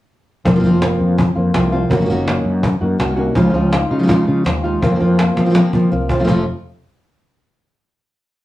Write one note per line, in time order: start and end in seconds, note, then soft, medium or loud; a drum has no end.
0.45 0.60 F1 loud
0.45 0.49 F3 medium
0.45 0.50 A#3 loud
0.45 0.50 C4 loud
0.45 0.51 F4 loud
0.45 cajon bass loud
0.51 0.54 F3 medium
0.51 0.54 A#3 medium
0.51 0.54 C4 medium
0.51 0.55 F4 medium
0.55 0.58 F3 medium
0.55 0.58 A#3 medium
0.55 0.59 C4 medium
0.55 0.59 F4 medium
0.59 0.93 F1 loud
0.59 0.62 F3 medium
0.59 0.81 F3 medium
0.59 0.63 A#3 medium
0.59 0.64 C4 medium
0.59 0.64 F4 medium
0.64 0.81 A#3 medium
0.64 0.81 C4 loud
0.64 0.80 F4 medium
0.64 cajon slap soft
0.81 1.16 F3 soft
0.81 1.17 A#3 soft
0.81 1.17 C4 medium
0.81 1.17 F4 medium
0.81 cajon slap loud
1.00 1.29 F2 medium
1.00 cajon slap soft
1.18 muted nylon-string guitar stroke medium
1.18 cajon bass loud
1.35 1.51 F2 medium
1.35 1.72 A#3 soft
1.35 1.72 C4 soft
1.35 1.71 F4 soft
1.54 1.83 C2 medium
1.54 1.72 F3 medium
1.54 1.72 A#3 medium
1.54 1.72 C4 medium
1.54 1.71 F4 medium
1.54 cajon bass medium
1.54 cajon slap loud
1.72 1.90 A#3 medium
1.72 1.90 C4 medium
1.72 1.90 F4 medium
1.72 cajon slap soft
1.89 2.05 F#1 loud
1.89 1.94 D#3 medium
1.89 2.25 F#3 medium
1.89 1.96 A#3 loud
1.89 1.95 C#4 loud
1.89 2.26 D#4 medium
1.89 1.96 F#4 loud
1.89 cajon bass loud
1.96 2.00 D#3 medium
1.96 2.00 A#3 medium
1.96 2.00 C#4 medium
1.96 2.00 F#4 medium
2.01 2.03 D#3 medium
2.01 2.08 D#3 medium
2.01 2.05 A#3 medium
2.01 2.05 C#4 medium
2.01 2.05 F#4 medium
2.06 2.38 F#1 loud
2.06 2.27 D#3 medium
2.06 2.09 A#3 medium
2.06 2.09 C#4 medium
2.06 2.10 F#4 medium
2.10 2.27 A#3 loud
2.10 2.27 C#4 medium
2.10 2.25 F#4 loud
2.26 2.62 F#3 medium
2.26 2.62 A#3 medium
2.26 2.62 C#4 medium
2.26 2.62 D#4 medium
2.26 2.62 F#4 medium
2.26 cajon slap loud
2.45 2.74 F#2 medium
2.63 muted nylon-string guitar stroke medium
2.63 cajon bass loud
2.81 2.96 F#2 loud
2.81 3.17 A#3 soft
2.81 3.17 D#4 soft
2.81 3.16 F#4 medium
2.99 3.29 C2 loud
2.99 3.17 D#3 medium
2.99 3.17 A#3 medium
2.99 3.17 C#4 medium
2.99 3.15 F#4 medium
2.99 cajon slap loud
3.16 3.36 A#3 medium
3.16 3.35 C#4 medium
3.16 3.35 D#4 soft
3.16 3.34 F#4 medium
3.16 cajon slap soft
3.36 3.51 C#2 loud
3.36 3.53 C#3 loud
3.36 3.53 F3 medium
3.36 3.54 G#3 loud
3.36 3.54 D#4 loud
3.36 3.53 F4 loud
3.36 cajon bass loud
3.45 3.48 F3 medium
3.45 3.49 G#3 medium
3.45 3.49 D#4 medium
3.45 3.49 F4 medium
3.50 3.53 F3 medium
3.50 3.53 G#3 medium
3.50 3.54 D#4 medium
3.54 3.83 C#2 loud
3.54 3.71 C#3 medium
3.54 3.71 F3 medium
3.54 3.71 G#3 medium
3.54 3.72 D#4 medium
3.54 3.72 F4 medium
3.54 cajon slap soft
3.72 4.08 G#3 soft
3.72 4.09 D#4 soft
3.72 4.08 F4 medium
3.72 muted nylon-string guitar stroke medium
3.72 cajon slap loud
3.91 4.20 C#3 medium
3.91 3.99 G#3 medium
3.91 3.98 D#4 medium
3.91 3.99 F4 medium
3.99 4.02 F3 medium
3.99 4.02 G#3 medium
3.99 4.03 D#4 medium
3.99 4.04 F4 medium
4.03 4.07 F3 medium
4.03 4.08 G#3 medium
4.03 4.08 D#4 medium
4.03 4.08 F4 medium
4.08 4.26 C#3 loud
4.08 4.26 F3 medium
4.08 4.26 G#3 loud
4.08 4.26 D#4 loud
4.08 4.26 F4 loud
4.08 muted nylon-string guitar stroke medium
4.08 cajon bass loud
4.27 4.42 C#3 loud
4.27 4.44 G#3 medium
4.27 4.44 D#4 medium
4.27 4.44 F4 medium
4.44 4.75 D#2 loud
4.44 4.63 F3 soft
4.44 4.63 G#3 medium
4.44 4.63 D#4 medium
4.44 4.62 F4 medium
4.44 muted nylon-string guitar stroke medium
4.44 cajon bass medium
4.44 cajon slap loud
4.64 4.82 G#3 medium
4.64 4.82 D#4 medium
4.64 4.81 F4 medium
4.82 4.97 F2 loud
4.82 5.00 F3 medium
4.82 5.00 A#3 loud
4.82 5.00 C4 medium
4.82 4.99 F4 loud
4.82 cajon bass loud
4.90 4.94 F3 soft
4.90 4.94 A#3 soft
4.90 4.94 C4 medium
4.90 4.95 F4 medium
4.95 4.98 F3 medium
4.95 4.99 A#3 medium
4.95 4.99 C4 medium
4.95 5.00 F4 medium
4.99 5.30 F2 loud
4.99 5.17 F3 medium
4.99 5.18 A#3 soft
4.99 5.18 C4 medium
4.99 5.18 F4 medium
4.99 cajon slap soft
5.18 5.54 A#3 soft
5.18 5.54 C4 soft
5.18 5.54 F4 medium
5.18 muted nylon-string guitar stroke medium
5.18 cajon slap loud
5.36 5.66 F3 medium
5.36 5.45 A#3 soft
5.36 5.45 C4 medium
5.36 5.45 F4 medium
5.36 cajon slap medium
5.45 5.49 F3 medium
5.45 5.49 A#3 medium
5.45 5.50 C4 medium
5.45 5.50 F4 medium
5.50 5.53 F3 medium
5.50 5.54 A#3 medium
5.50 5.54 C4 medium
5.50 5.54 F4 medium
5.54 5.72 F3 loud
5.54 5.73 A#3 loud
5.54 5.73 C4 loud
5.54 5.73 F4 loud
5.54 muted nylon-string guitar stroke medium
5.54 cajon slap loud
5.73 5.88 F3 medium
5.73 5.91 A#3 medium
5.73 5.91 C4 medium
5.73 5.91 F4 medium
5.73 cajon bass medium
5.91 6.21 C2 medium
5.91 6.09 F3 medium
5.91 6.09 A#3 soft
5.91 6.09 C4 medium
5.91 6.08 F4 medium
5.91 muted nylon-string guitar stroke medium
6.09 6.20 A#3 soft
6.09 6.19 C4 medium
6.09 6.19 F4 medium
6.09 cajon bass loud
6.15 6.18 C3 soft
6.15 6.19 F3 soft
6.15 6.19 A3 soft
6.15 6.19 C4 medium
6.15 6.19 F4 medium
6.20 6.23 C3 medium
6.20 6.23 F3 medium
6.20 6.23 A3 medium
6.20 6.24 C4 medium
6.20 6.24 F4 medium
6.24 6.27 C3 medium
6.24 6.27 F3 medium
6.24 6.28 A3 medium
6.24 6.28 C4 medium
6.24 6.29 F4 medium
6.24 cajon bass loud
6.28 6.46 F1 loud
6.28 6.43 F2 medium
6.28 6.43 C3 medium
6.28 6.43 F3 loud
6.28 6.43 A3 medium
6.28 6.43 C4 loud
6.28 6.44 F4 loud